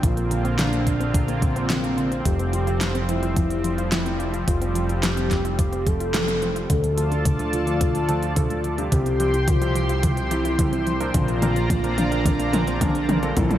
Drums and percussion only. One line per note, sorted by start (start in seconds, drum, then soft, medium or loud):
0.03 kick loud
0.03 closed hi-hat medium
0.17 closed hi-hat soft
0.31 closed hi-hat medium
0.45 closed hi-hat soft
0.59 snare loud
0.59 closed hi-hat medium
0.73 closed hi-hat soft
0.87 kick medium
0.87 closed hi-hat medium
1.01 closed hi-hat soft
1.14 kick loud
1.14 closed hi-hat medium
1.28 closed hi-hat soft
1.42 kick loud
1.42 closed hi-hat medium
1.56 closed hi-hat soft
1.70 snare loud
1.70 closed hi-hat medium
1.84 closed hi-hat soft
1.98 closed hi-hat soft
2.12 closed hi-hat soft
2.25 kick loud
2.25 closed hi-hat medium
2.39 closed hi-hat soft
2.53 closed hi-hat medium
2.67 closed hi-hat soft
2.81 snare loud
2.81 closed hi-hat medium
2.95 closed hi-hat soft
3.09 closed hi-hat medium
3.23 closed hi-hat soft
3.36 kick loud
3.36 closed hi-hat medium
3.50 closed hi-hat soft
3.64 closed hi-hat medium
3.78 closed hi-hat soft
3.92 snare loud
3.92 closed hi-hat medium
4.06 closed hi-hat soft
4.20 closed hi-hat soft
4.34 closed hi-hat soft
4.48 kick loud
4.48 closed hi-hat medium
4.62 closed hi-hat soft
4.75 closed hi-hat medium
4.89 closed hi-hat soft
5.03 snare loud
5.03 closed hi-hat loud
5.17 closed hi-hat soft
5.31 kick medium
5.31 snare medium
5.31 closed hi-hat medium
5.45 closed hi-hat soft
5.59 kick loud
5.59 closed hi-hat medium
5.73 closed hi-hat soft
5.87 kick loud
5.87 closed hi-hat medium
6.00 closed hi-hat soft
6.14 snare loud
6.14 closed hi-hat medium
6.28 closed hi-hat soft
6.42 closed hi-hat soft
6.56 closed hi-hat soft
6.70 kick loud
6.70 closed hi-hat medium
6.70 mid tom soft
6.84 closed hi-hat soft
6.98 closed hi-hat medium
7.12 closed hi-hat soft
7.25 kick loud
7.25 closed hi-hat loud
7.25 mid tom soft
7.39 closed hi-hat soft
7.53 closed hi-hat medium
7.67 closed hi-hat soft
7.81 kick medium
7.81 closed hi-hat medium
7.81 mid tom medium
7.95 closed hi-hat soft
8.09 closed hi-hat medium
8.23 closed hi-hat soft
8.36 kick medium
8.36 closed hi-hat medium
8.36 mid tom medium
8.50 closed hi-hat soft
8.64 closed hi-hat soft
8.78 closed hi-hat soft
8.92 kick loud
8.92 closed hi-hat medium
8.92 mid tom medium
9.06 closed hi-hat soft
9.20 closed hi-hat medium
9.34 closed hi-hat soft
9.48 kick loud
9.48 closed hi-hat medium
9.48 mid tom medium
9.62 closed hi-hat soft
9.75 closed hi-hat medium
9.89 closed hi-hat soft
10.03 kick loud
10.03 closed hi-hat medium
10.03 mid tom medium
10.17 closed hi-hat soft
10.31 closed hi-hat medium
10.45 closed hi-hat soft
10.59 kick loud
10.59 closed hi-hat medium
10.59 mid tom medium
10.73 closed hi-hat soft
10.87 closed hi-hat soft
11.01 closed hi-hat soft
11.14 kick loud
11.14 closed hi-hat loud
11.14 mid tom medium
11.28 closed hi-hat soft
11.42 closed hi-hat medium
11.42 mid tom medium
11.56 closed hi-hat soft
11.70 kick loud
11.70 closed hi-hat loud
11.70 mid tom medium
11.84 closed hi-hat soft
11.98 closed hi-hat medium
11.98 mid tom medium
12.12 closed hi-hat soft
12.26 kick loud
12.26 closed hi-hat medium
12.26 mid tom medium
12.40 closed hi-hat soft
12.53 closed hi-hat medium
12.53 mid tom medium
12.67 closed hi-hat soft
12.81 kick medium
12.81 closed hi-hat medium
12.81 mid tom medium
12.95 closed hi-hat soft
13.09 closed hi-hat soft
13.09 mid tom medium
13.23 closed hi-hat soft
13.37 kick loud
13.37 closed hi-hat medium
13.37 mid tom medium
13.51 closed hi-hat soft
13.51 mid tom medium